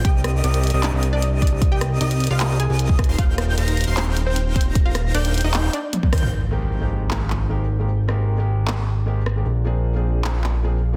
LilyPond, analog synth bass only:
\new Staff \with { instrumentName = "Analog synth bass" } { \clef bass \time 4/4 \key aes \lydian \tempo 4 = 153 c,4 c,8. c,8 c,4. c,16~ | c,4 c,8. c,4 c,4 ees,,16 | r4 ees,,8. ees,,8 ees,,4. ees,,16~ | ees,,4 ees,,8. ees,,8. r4 ees,8 |
aes,,1~ | aes,,1 | bes,,1 | }